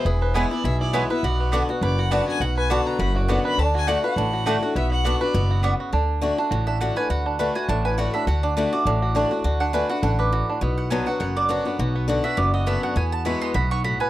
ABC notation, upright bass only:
X:1
M:4/4
L:1/8
Q:"Swing" 1/4=205
K:Dlyd
V:1 name="Upright bass" clef=bass
E,,,4 B,,,4 | B,,,4 F,,,4 | B,,,4 F,,,4 | D,,4 A,,,4 |
B,,,4 F,,,4 | D,,4 A,,,4 | D,,4 A,,,4 | D,,4 A,,,4 |
D,,4 A,,,4 | B,,,4 F,,,4 | B,,,4 F,,,4 | E,,4 B,,,4 |]